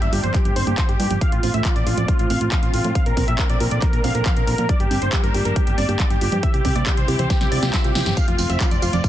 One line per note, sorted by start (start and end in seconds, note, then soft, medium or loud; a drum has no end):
0.00 0.09 G1 medium
0.00 1.18 G3 medium
0.00 1.18 A#3 medium
0.00 1.18 D4 medium
0.00 0.11 E5 medium
0.00 closed hi-hat soft
0.13 0.20 G1 loud
0.13 0.23 F4 medium
0.13 0.22 G4 medium
0.13 open hi-hat medium
0.23 0.31 G1 medium
0.23 0.33 F3 medium
0.23 0.33 C5 medium
0.23 closed hi-hat soft
0.34 0.44 F3 medium
0.34 0.43 G4 medium
0.34 kick loud
0.34 clap soft
0.34 closed hi-hat medium
0.45 0.52 G1 medium
0.45 0.54 G4 medium
0.45 closed hi-hat soft
0.56 0.63 G1 medium
0.56 0.63 C4 medium
0.56 0.65 C5 medium
0.56 open hi-hat loud
0.67 0.74 G1 medium
0.67 0.74 A#3 medium
0.67 0.76 G4 medium
0.67 closed hi-hat soft
0.78 0.85 F3 medium
0.78 0.87 C5 medium
0.78 kick loud
0.78 clap loud
0.78 closed hi-hat medium
0.89 0.96 G1 medium
0.89 0.98 G4 medium
0.89 closed hi-hat soft
1.00 1.07 G2 loud
1.00 1.10 F4 medium
1.00 1.09 G4 medium
1.00 open hi-hat medium
1.11 1.18 G1 medium
1.11 1.20 F3 medium
1.11 1.20 G4 medium
1.11 closed hi-hat soft
1.21 2.94 F3 medium
1.21 1.31 F3 medium
1.21 2.94 A3 medium
1.21 4.66 C4 medium
1.21 1.30 F5 medium
1.21 kick loud
1.21 closed hi-hat medium
1.32 1.39 A1 medium
1.32 1.41 F4 medium
1.32 closed hi-hat soft
1.43 1.50 A1 medium
1.43 1.50 C4 medium
1.43 1.52 F4 medium
1.43 open hi-hat loud
1.54 1.61 A1 medium
1.54 1.61 A3 medium
1.54 1.63 E5 medium
1.54 closed hi-hat soft
1.65 1.71 F3 medium
1.65 1.74 F4 medium
1.65 kick loud
1.65 clap loud
1.65 closed hi-hat medium
1.76 1.83 A1 medium
1.76 1.85 D5 medium
1.76 closed hi-hat soft
1.87 1.94 A1 loud
1.87 1.96 F4 medium
1.87 open hi-hat medium
1.97 2.05 A1 medium
1.97 2.07 F3 medium
1.97 2.07 D5 medium
1.97 closed hi-hat soft
2.08 2.18 F3 medium
2.08 2.17 F4 medium
2.08 kick loud
2.08 closed hi-hat medium
2.19 2.26 A1 medium
2.19 2.28 F4 medium
2.19 closed hi-hat soft
2.30 2.37 A1 loud
2.30 2.37 C4 medium
2.30 2.39 F5 medium
2.30 open hi-hat loud
2.41 2.48 A1 medium
2.41 2.48 A3 medium
2.41 2.50 F4 medium
2.41 closed hi-hat soft
2.52 2.58 F3 medium
2.52 2.61 F5 medium
2.52 kick loud
2.52 clap loud
2.52 closed hi-hat medium
2.63 2.70 A1 medium
2.63 2.72 F4 medium
2.63 closed hi-hat soft
2.74 2.81 A1 loud
2.74 2.83 F4 medium
2.74 open hi-hat medium
2.84 2.92 A2 medium
2.84 2.94 F3 medium
2.84 2.93 F4 medium
2.84 closed hi-hat soft
2.95 4.67 D3 medium
2.95 3.05 F3 medium
2.95 6.40 A#3 medium
2.95 3.04 F5 medium
2.95 kick loud
2.95 closed hi-hat medium
3.06 3.13 A#1 medium
3.06 3.15 A#4 medium
3.06 closed hi-hat soft
3.17 3.24 A#1 medium
3.17 3.24 C4 medium
3.17 3.26 A#4 medium
3.17 kick medium
3.17 open hi-hat loud
3.28 3.35 A#1 medium
3.28 3.35 A#3 medium
3.28 3.37 E5 medium
3.28 closed hi-hat medium
3.39 3.45 F3 medium
3.39 3.48 A#4 medium
3.39 kick loud
3.39 clap loud
3.39 closed hi-hat medium
3.50 3.57 A#1 medium
3.50 3.59 D5 medium
3.50 closed hi-hat medium
3.60 3.68 A#1 loud
3.60 3.70 F4 medium
3.60 3.69 A#4 medium
3.60 open hi-hat medium
3.71 3.79 A#1 medium
3.71 3.81 F3 medium
3.71 3.80 D5 medium
3.71 closed hi-hat medium
3.82 3.92 F3 medium
3.82 3.91 A#4 medium
3.82 kick loud
3.82 clap soft
3.82 closed hi-hat medium
3.93 4.00 A#1 medium
3.93 4.02 A#4 medium
3.93 closed hi-hat soft
4.04 4.11 A#1 loud
4.04 4.11 C4 medium
4.04 4.13 F5 medium
4.04 open hi-hat medium
4.15 4.22 A#1 medium
4.15 4.21 A#3 medium
4.15 4.24 A#4 medium
4.15 closed hi-hat soft
4.26 4.32 F3 medium
4.26 4.35 F5 medium
4.26 kick loud
4.26 clap loud
4.26 closed hi-hat medium
4.37 4.44 A#1 medium
4.37 4.46 A#4 medium
4.37 closed hi-hat medium
4.47 4.55 A#1 loud
4.47 4.57 F4 medium
4.47 4.56 A#4 medium
4.47 open hi-hat medium
4.58 4.65 A#2 medium
4.58 4.68 F3 medium
4.58 4.67 A#4 medium
4.58 closed hi-hat soft
4.69 4.79 F3 medium
4.69 6.41 G3 medium
4.69 6.41 D4 medium
4.69 4.78 D5 medium
4.69 kick loud
4.69 closed hi-hat medium
4.80 4.87 G1 medium
4.80 4.89 G4 medium
4.80 closed hi-hat medium
4.91 4.98 G1 medium
4.91 4.98 C4 medium
4.91 5.00 G4 medium
4.91 open hi-hat medium
5.02 5.09 G1 medium
5.02 5.08 A#3 medium
5.02 5.11 C5 medium
5.02 closed hi-hat medium
5.13 5.19 F3 medium
5.13 5.22 G4 medium
5.13 kick loud
5.13 clap loud
5.13 closed hi-hat medium
5.23 5.31 G1 medium
5.23 5.33 A#4 medium
5.23 closed hi-hat medium
5.34 5.42 G1 loud
5.34 5.44 F4 medium
5.34 5.43 G4 medium
5.34 open hi-hat medium
5.45 5.52 G1 medium
5.45 5.55 F3 medium
5.45 5.54 A#4 medium
5.45 closed hi-hat soft
5.56 5.66 F3 medium
5.56 5.65 G4 medium
5.56 kick loud
5.56 closed hi-hat medium
5.67 5.74 G1 medium
5.67 5.76 G4 medium
5.67 closed hi-hat medium
5.78 5.85 G1 loud
5.78 5.84 C4 medium
5.78 5.87 D5 medium
5.78 open hi-hat medium
5.89 5.96 G1 medium
5.89 5.95 A#3 medium
5.89 5.98 G4 medium
5.89 closed hi-hat medium
5.99 6.06 F3 medium
5.99 6.08 D5 medium
5.99 kick loud
5.99 clap loud
5.99 closed hi-hat medium
6.10 6.18 G1 medium
6.10 6.19 G4 medium
6.10 closed hi-hat medium
6.21 6.29 G1 loud
6.21 6.31 F4 medium
6.21 6.30 G4 medium
6.21 open hi-hat medium
6.32 6.39 G2 medium
6.32 6.42 F3 medium
6.32 6.41 G4 medium
6.32 closed hi-hat medium
6.43 8.15 C3 medium
6.43 6.53 E3 medium
6.43 9.09 C4 medium
6.43 8.15 E4 medium
6.43 8.15 G4 medium
6.43 6.52 E5 medium
6.43 kick loud
6.43 closed hi-hat medium
6.54 6.61 C2 medium
6.54 6.63 G4 medium
6.54 closed hi-hat medium
6.65 6.72 C2 medium
6.65 6.71 C4 medium
6.65 6.74 G4 medium
6.65 kick medium
6.65 open hi-hat loud
6.76 6.83 C2 medium
6.76 6.82 A#3 medium
6.76 6.85 D5 medium
6.76 closed hi-hat medium
6.86 6.93 E3 medium
6.86 6.96 G4 medium
6.86 kick loud
6.86 clap loud
6.86 closed hi-hat medium
6.97 7.05 C2 medium
6.97 7.06 C5 medium
6.97 closed hi-hat medium
7.08 7.15 C2 loud
7.08 7.18 E4 medium
7.08 7.17 G4 medium
7.08 open hi-hat medium
7.19 7.26 C2 medium
7.19 7.29 E3 medium
7.19 7.28 C5 medium
7.19 closed hi-hat medium
7.30 7.40 E3 medium
7.30 7.39 G4 medium
7.30 kick loud
7.30 snare medium
7.30 closed hi-hat medium
7.30 swell medium
7.41 7.48 C2 medium
7.41 7.50 G4 medium
7.41 snare medium
7.41 closed hi-hat medium
7.52 7.59 C2 loud
7.52 7.58 C4 medium
7.52 7.61 D5 medium
7.52 open hi-hat loud
7.63 7.70 C2 medium
7.63 7.69 A#3 medium
7.63 7.72 G4 medium
7.63 snare medium
7.63 closed hi-hat medium
7.73 7.80 E3 medium
7.73 7.82 E5 medium
7.73 kick loud
7.73 snare medium
7.73 clap loud
7.73 closed hi-hat medium
7.84 7.92 C2 medium
7.84 7.93 G4 medium
7.84 closed hi-hat medium
7.95 8.02 C2 loud
7.95 8.05 E4 medium
7.95 8.04 G4 medium
7.95 snare loud
7.95 open hi-hat medium
8.06 8.13 G1 medium
8.06 8.16 E3 medium
8.06 8.15 G4 medium
8.06 snare medium
8.06 closed hi-hat medium
8.17 8.27 F3 medium
8.17 9.09 A3 medium
8.17 9.09 F4 medium
8.17 8.26 F5 medium
8.17 kick loud
8.17 closed hi-hat medium
8.17 tambourine medium
8.28 8.35 F1 medium
8.28 8.37 F4 medium
8.28 closed hi-hat medium
8.38 8.46 F1 medium
8.38 8.45 C4 medium
8.38 8.48 F4 medium
8.38 open hi-hat loud
8.38 tambourine medium
8.50 8.57 F1 medium
8.50 8.56 F4 medium
8.50 8.59 E5 medium
8.50 closed hi-hat medium
8.50 tambourine soft
8.60 8.67 F3 medium
8.60 8.69 F4 medium
8.60 kick loud
8.60 clap loud
8.60 closed hi-hat loud
8.60 tambourine soft
8.71 8.79 F1 medium
8.71 8.80 D5 medium
8.71 closed hi-hat medium
8.71 tambourine soft
8.82 8.89 F1 loud
8.82 8.92 F4 medium
8.82 8.91 F4 medium
8.82 open hi-hat medium
8.82 tambourine medium
8.93 9.00 F1 medium
8.93 9.03 F3 medium
8.93 9.02 D5 medium
8.93 closed hi-hat medium
8.93 tambourine soft
9.04 9.09 F3 medium
9.04 9.09 F4 medium
9.04 kick loud
9.04 closed hi-hat medium
9.04 tambourine soft